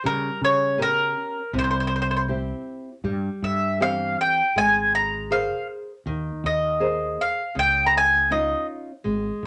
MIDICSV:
0, 0, Header, 1, 4, 480
1, 0, Start_track
1, 0, Tempo, 750000
1, 982, Time_signature, 4, 2, 24, 8
1, 6056, End_track
2, 0, Start_track
2, 0, Title_t, "Mandolin"
2, 0, Program_c, 0, 25
2, 40, Note_on_c, 0, 70, 80
2, 258, Note_off_c, 0, 70, 0
2, 284, Note_on_c, 0, 73, 74
2, 497, Note_off_c, 0, 73, 0
2, 526, Note_on_c, 0, 70, 89
2, 967, Note_off_c, 0, 70, 0
2, 1015, Note_on_c, 0, 72, 69
2, 1041, Note_off_c, 0, 72, 0
2, 1049, Note_on_c, 0, 72, 53
2, 1084, Note_off_c, 0, 72, 0
2, 1092, Note_on_c, 0, 72, 51
2, 1128, Note_off_c, 0, 72, 0
2, 1153, Note_on_c, 0, 72, 50
2, 1183, Note_off_c, 0, 72, 0
2, 1198, Note_on_c, 0, 72, 55
2, 1229, Note_off_c, 0, 72, 0
2, 1253, Note_on_c, 0, 72, 45
2, 1279, Note_off_c, 0, 72, 0
2, 1291, Note_on_c, 0, 72, 54
2, 1322, Note_off_c, 0, 72, 0
2, 1349, Note_on_c, 0, 72, 45
2, 1374, Note_off_c, 0, 72, 0
2, 1386, Note_on_c, 0, 72, 45
2, 1416, Note_off_c, 0, 72, 0
2, 2202, Note_on_c, 0, 76, 58
2, 2419, Note_off_c, 0, 76, 0
2, 2446, Note_on_c, 0, 77, 81
2, 2664, Note_off_c, 0, 77, 0
2, 2694, Note_on_c, 0, 79, 74
2, 2927, Note_off_c, 0, 79, 0
2, 2930, Note_on_c, 0, 80, 89
2, 3147, Note_off_c, 0, 80, 0
2, 3167, Note_on_c, 0, 82, 83
2, 3401, Note_off_c, 0, 82, 0
2, 3404, Note_on_c, 0, 77, 68
2, 3625, Note_off_c, 0, 77, 0
2, 4135, Note_on_c, 0, 75, 65
2, 4616, Note_on_c, 0, 77, 71
2, 4620, Note_off_c, 0, 75, 0
2, 4828, Note_off_c, 0, 77, 0
2, 4858, Note_on_c, 0, 79, 88
2, 5030, Note_off_c, 0, 79, 0
2, 5033, Note_on_c, 0, 82, 65
2, 5076, Note_off_c, 0, 82, 0
2, 5103, Note_on_c, 0, 80, 86
2, 5311, Note_off_c, 0, 80, 0
2, 5323, Note_on_c, 0, 75, 58
2, 5541, Note_off_c, 0, 75, 0
2, 6056, End_track
3, 0, Start_track
3, 0, Title_t, "Nylon-string guitar"
3, 0, Program_c, 1, 24
3, 23, Note_on_c, 1, 55, 59
3, 489, Note_off_c, 1, 55, 0
3, 500, Note_on_c, 1, 61, 50
3, 506, Note_on_c, 1, 70, 57
3, 507, Note_on_c, 1, 67, 41
3, 884, Note_off_c, 1, 61, 0
3, 887, Note_off_c, 1, 70, 0
3, 889, Note_off_c, 1, 67, 0
3, 984, Note_on_c, 1, 48, 64
3, 1448, Note_off_c, 1, 48, 0
3, 1460, Note_on_c, 1, 60, 46
3, 1466, Note_on_c, 1, 64, 39
3, 1466, Note_on_c, 1, 67, 51
3, 1846, Note_off_c, 1, 60, 0
3, 1849, Note_off_c, 1, 64, 0
3, 1850, Note_off_c, 1, 67, 0
3, 1949, Note_on_c, 1, 55, 59
3, 2416, Note_off_c, 1, 55, 0
3, 2433, Note_on_c, 1, 52, 41
3, 2434, Note_on_c, 1, 60, 40
3, 2437, Note_on_c, 1, 67, 53
3, 2818, Note_off_c, 1, 60, 0
3, 2818, Note_off_c, 1, 67, 0
3, 2819, Note_off_c, 1, 52, 0
3, 2918, Note_on_c, 1, 56, 59
3, 3383, Note_off_c, 1, 56, 0
3, 3396, Note_on_c, 1, 68, 46
3, 3400, Note_on_c, 1, 70, 40
3, 3401, Note_on_c, 1, 72, 49
3, 3781, Note_off_c, 1, 68, 0
3, 3783, Note_off_c, 1, 70, 0
3, 3783, Note_off_c, 1, 72, 0
3, 3882, Note_on_c, 1, 51, 63
3, 4345, Note_off_c, 1, 51, 0
3, 4353, Note_on_c, 1, 68, 44
3, 4355, Note_on_c, 1, 70, 37
3, 4358, Note_on_c, 1, 72, 49
3, 4737, Note_off_c, 1, 68, 0
3, 4739, Note_off_c, 1, 70, 0
3, 4740, Note_off_c, 1, 72, 0
3, 4832, Note_on_c, 1, 49, 57
3, 5297, Note_off_c, 1, 49, 0
3, 5314, Note_on_c, 1, 61, 50
3, 5317, Note_on_c, 1, 63, 50
3, 5321, Note_on_c, 1, 65, 53
3, 5696, Note_off_c, 1, 61, 0
3, 5697, Note_off_c, 1, 63, 0
3, 5700, Note_off_c, 1, 65, 0
3, 5787, Note_on_c, 1, 56, 57
3, 6056, Note_off_c, 1, 56, 0
3, 6056, End_track
4, 0, Start_track
4, 0, Title_t, "Fretless electric bass"
4, 0, Program_c, 2, 35
4, 33, Note_on_c, 2, 49, 83
4, 187, Note_off_c, 2, 49, 0
4, 265, Note_on_c, 2, 49, 76
4, 731, Note_off_c, 2, 49, 0
4, 981, Note_on_c, 2, 36, 85
4, 1606, Note_off_c, 2, 36, 0
4, 1945, Note_on_c, 2, 43, 72
4, 2102, Note_off_c, 2, 43, 0
4, 2192, Note_on_c, 2, 43, 69
4, 2661, Note_off_c, 2, 43, 0
4, 2918, Note_on_c, 2, 32, 70
4, 3543, Note_off_c, 2, 32, 0
4, 3877, Note_on_c, 2, 39, 71
4, 4033, Note_off_c, 2, 39, 0
4, 4120, Note_on_c, 2, 39, 74
4, 4586, Note_off_c, 2, 39, 0
4, 4838, Note_on_c, 2, 37, 76
4, 5458, Note_off_c, 2, 37, 0
4, 5794, Note_on_c, 2, 32, 79
4, 5949, Note_off_c, 2, 32, 0
4, 6033, Note_on_c, 2, 32, 83
4, 6056, Note_off_c, 2, 32, 0
4, 6056, End_track
0, 0, End_of_file